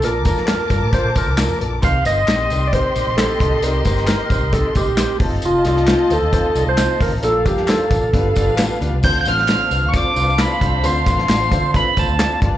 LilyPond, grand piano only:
<<
  \new Staff \with { instrumentName = "Grand piano" } { \time 4/4 \key c \dorian \tempo 4 = 133 <bes d' f' a' bes'>8 <bes d' f' a' bes'>8 <bes d' f' a' bes'>8 <bes d' f' a' bes'>8 <bes d' f' a' bes'>8 <bes d' f' a' c''>8 <bes d' f' a' bes'>8 <bes d' f' a' bes'>8 | <c' ees' g' bes' c''>8 <c' ees' g' bes' c''>8 <c' ees' g' bes' d''>8 <c' ees' g' bes' d''>8 <c' ees' g' bes' c''>8 <c' ees' g' bes' d''>8 <c' ees' g' bes' c''>8 <c' ees' g' bes' ees''>8 | <c' ees' g' bes' d''>8 <c' ees' g' bes' c''>8 <c' ees' g' bes' c''>8 <c' ees' g' bes' c''>8 <c' ees' g' bes' ees''>8 <c' ees' g' bes' ees''>8 <c' ees' g' bes' c''>8 <c' ees' f' a' c''>8~ | <c' ees' f' a' c''>8 <c' ees' f' a' d''>8 <c' ees' f' a' c''>8 <c' ees' f' a' c''>8 <c' ees' f' a' c''>8 <c' ees' f' a' d''>8 <c' ees' f' a' ees''>8 <c' ees' f' a' c''>8 |
<bes d' f' a' bes'>8 <bes d' f' a' bes'>8 <bes d' f' a' c''>8 <bes d' f' a' bes'>8 <b d' f' g' b'>8 <b d' f' g' d''>8 <b d' f' g' a'>8 <b d' f' g' d''>8 | \key d \dorian <c' d' f' a' c''>8 <c' d' f' a' c''>8 <c' d' f' a' c''>8 <c' d' f' a' b'>8 <c' d' f' a' d''>8 <c' d' f' a' b'>8 <c' d' f' a' b'>8 <c' d' f' a' c''>8 | <c' d' f' a' c''>8 <c' d' f' a' b'>8 <c' d' f' a' d''>8 <c' d' f' a' c''>8 <c' d' f' a' b'>8 <c' d' f' a' c''>8 <c' d' f' a' d''>8 <d' f' g' bes' b' d''>8 | }
  \new Staff \with { instrumentName = "Grand piano" } { \clef bass \time 4/4 \key c \dorian bes,4. r2 r8 | c4. r2 r8 | c4. r2 r8 | r1 |
bes,4. r8 g,4. r8 | \key d \dorian d4. r2 r8 | d4. r2 g,8 | }
>>